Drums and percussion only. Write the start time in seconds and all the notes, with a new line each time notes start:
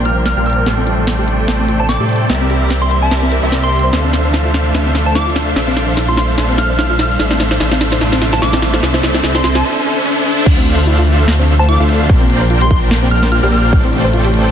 0.05 closed hi-hat
0.26 snare, closed hi-hat
0.46 closed hi-hat
0.50 closed hi-hat
0.53 closed hi-hat
0.66 snare, closed hi-hat
0.87 closed hi-hat
1.07 snare, closed hi-hat
1.28 closed hi-hat
1.48 snare, closed hi-hat
1.68 closed hi-hat
1.89 snare, closed hi-hat
2.09 closed hi-hat
2.13 closed hi-hat
2.16 closed hi-hat
2.30 snare, closed hi-hat
2.50 closed hi-hat
2.70 snare, closed hi-hat
2.91 closed hi-hat
3.11 snare, closed hi-hat
3.32 closed hi-hat
3.52 snare, closed hi-hat
3.73 closed hi-hat
3.76 closed hi-hat
3.79 closed hi-hat
3.93 snare, closed hi-hat
4.13 snare, closed hi-hat
4.34 snare, closed hi-hat
4.54 snare, closed hi-hat
4.75 snare, closed hi-hat
4.95 snare, closed hi-hat
5.15 snare, closed hi-hat
5.36 snare, closed hi-hat, open hi-hat
5.43 closed hi-hat
5.56 snare, closed hi-hat
5.77 snare, closed hi-hat
5.97 snare, closed hi-hat
6.17 snare, closed hi-hat
6.38 snare, closed hi-hat
6.58 snare, closed hi-hat
6.79 snare, closed hi-hat
6.99 snare, closed hi-hat, open hi-hat
7.06 closed hi-hat
7.19 snare, closed hi-hat
7.31 snare
7.40 snare, closed hi-hat
7.51 snare
7.60 snare, closed hi-hat
7.72 snare
7.81 snare, closed hi-hat
7.92 snare
8.01 snare, closed hi-hat
8.12 snare
8.22 snare, closed hi-hat
8.33 snare
8.42 snare, closed hi-hat
8.53 snare
8.62 snare, closed hi-hat, open hi-hat
8.69 closed hi-hat
8.74 snare
8.83 snare, closed hi-hat
8.94 snare
9.03 snare, closed hi-hat
9.14 snare
9.24 snare, closed hi-hat
9.35 snare
9.44 snare, closed hi-hat
9.55 snare
10.46 kick, closed hi-hat, crash
10.67 closed hi-hat
10.87 closed hi-hat
10.98 closed hi-hat
11.07 closed hi-hat
11.28 snare, closed hi-hat, crash
11.48 closed hi-hat
11.69 closed hi-hat
11.89 open hi-hat
11.95 closed hi-hat
12.09 kick, closed hi-hat, crash
12.30 closed hi-hat
12.50 closed hi-hat
12.61 closed hi-hat
12.71 kick, closed hi-hat
12.91 snare, closed hi-hat, crash
13.12 closed hi-hat
13.23 snare
13.32 closed hi-hat
13.52 open hi-hat
13.58 closed hi-hat
13.73 kick, closed hi-hat, crash
13.93 closed hi-hat
14.13 closed hi-hat
14.25 closed hi-hat
14.34 closed hi-hat